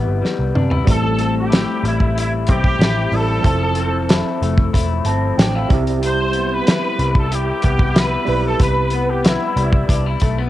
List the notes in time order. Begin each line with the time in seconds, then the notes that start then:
Already playing: C3 G3 B3 C4 E4 B4
0.07 G1
0.22 G3, muted picked electric bass stroke, snare
0.39 C2
0.55 C3 D4, mid tom
0.70 E4, floor tom
0.85 A1 A2 G3 C4 E4, kick, closed hi-hat
0.90 A4
1.18 C4, closed hi-hat
1.40 G4
1.50 E4, snare, closed hi-hat
1.83 A1 G3 E4, closed hi-hat
2.00 kick
2.15 E4, closed hi-hat
2.47 B1 C4, kick, closed hi-hat
2.51 G4
2.64 kick
2.79 A1 E4, snare, closed hi-hat
3.12 A1 G3 C4 E4 A4, open hi-hat
3.41 F1 F3 C4 E4, kick, closed hi-hat
3.46 A4
3.75 C4, closed hi-hat
4.09 E4, snare, closed hi-hat
4.42 F1 A3, closed hi-hat
4.58 kick
4.73 E1 E4, kick, closed hi-hat
5.05 G1 C4 A5, closed hi-hat
5.38 A1 D4 G5, snare, closed hi-hat
5.55 E4 F5
5.68 C2 C3 G3 C4 E4 E5, kick, closed hi-hat
5.74 G4
5.87 closed hi-hat
6.02 C3, closed hi-hat
6.06 C5
6.33 B3, closed hi-hat
6.54 B4
6.67 E4, snare, closed hi-hat
6.99 C2 G3, closed hi-hat
7.15 A4, kick
7.31 E4 G4, closed hi-hat
7.62 C2 B3, kick, closed hi-hat
7.79 kick
7.94 E4, snare, closed hi-hat
7.99 B4
8.25 B1 G3 C4 E4, open hi-hat
8.29 B4
8.46 A4
8.60 C2 B4, kick, closed hi-hat
8.90 B3, closed hi-hat
9.10 G4
9.24 E4, snare, closed hi-hat
9.56 C2 G3, closed hi-hat
9.73 kick
9.89 C2 D4, kick, closed hi-hat
10.06 E4
10.20 B1 A3, kick, closed hi-hat
10.38 B3